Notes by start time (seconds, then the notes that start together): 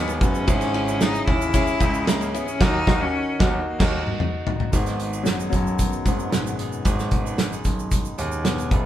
Already playing: D#2 G#2 F#3 B3 D#4 F#4 G#4 A#4
0.08 G#2 D#3 G#3 B3 D#4 G#4, ride, shaker
0.21 F#1 B3 C#4 D#4 F#4, kick, ride, shaker
0.35 shaker
0.47 G#1 G#2 C#3 G#3 C#4 E4 G#4, kick, ride, shaker
0.61 snare, ride, shaker
0.74 C#4 E4 G#4, ride
0.87 G#3 C#4 E4 G#4, shaker
1.00 C#4 D#4 E4 G#4, snare, ride, shaker
1.15 shaker
1.27 D#2 G#2 E3 G#3 C#4 E4 G#4, kick, ride
1.42 shaker
1.53 C#4 E4 G#4, kick, ride, shaker
1.67 shaker
1.80 C#2 G#3 C#4 E4 G#4, kick, ride, shaker
1.94 shaker
2.07 A#3 C#4 E4 G#4, snare, ride, shaker
2.20 G#2 E3 G#3 C#4 E4 G#4, ride, shaker
2.34 B3 C#4 E4 G#4, ride, shaker
2.48 C#4, shaker
2.59 D#2 D#3 F#3 D#4 F#4 A#4, kick, snare, crash
2.86 D#2 F#3 D#4 F#4 A#4, kick, snare
3.01 C#4
3.39 D#2 D#3 F#3 B3 D#4 F#4 A#4, kick, snare
3.68 A#3
3.79 D#2 F#3 D#4 F#4 A#4, kick, snare, crash
4.07 mid tom
4.20 mid tom
4.47 floor tom
4.60 floor tom
4.72 G#1 G#2 D#3 G#3 B3 D#4 G#4, kick, closed hi-hat, shaker
4.86 snare, closed hi-hat, shaker
5.00 closed hi-hat
5.13 G#3 B3 D#4 G#4, shaker
5.23 F#2 F#3, snare, closed hi-hat, shaker
5.39 G#3 B3 D#4 G#4, shaker
5.50 B1 F#2 F#3, kick, closed hi-hat, shaker
5.67 shaker
5.79 D#3 G#3 B3, kick, closed hi-hat, shaker
5.93 shaker
6.04 G#1 G#2 G#3 B3 D#4, kick, closed hi-hat, shaker
6.08 G#4
6.19 shaker
6.30 B2 G#3 B3 D#4, snare, closed hi-hat, shaker
6.35 G#4
6.47 shaker
6.59 G#3 B3 D#4 G#4, closed hi-hat
6.72 shaker
6.85 G#1 G#2 D#3 G#3 B3 D#4 G#4, kick, closed hi-hat, shaker
6.99 snare, shaker
7.11 D#3 G#3 B3, kick, closed hi-hat
7.25 G#3 B3 D#4 G#4, shaker
7.38 snare, closed hi-hat, shaker
7.51 G#3 B3 D#4 G#4, shaker
7.65 B1, kick, closed hi-hat, shaker
7.79 shaker
7.91 kick, closed hi-hat, shaker
8.05 shaker
8.18 D#2 G#3 B3 D#4 G#4, closed hi-hat, shaker
8.32 shaker
8.44 B2 G#3 B3 D#4 G#4, snare, closed hi-hat, shaker
8.58 closed hi-hat, shaker
8.70 F#1 A#2 G#3 A#3 B3 D#4, kick, closed hi-hat
8.74 G#4